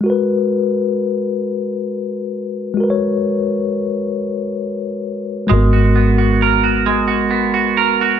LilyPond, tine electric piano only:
\new Staff \with { instrumentName = "Tine electric piano" } { \time 6/8 \key gis \dorian \tempo 4. = 44 <gis fis' ais' b'>2. | <gis fis' ais' b' cis''>2. | <gis b fis' ais'>2. | }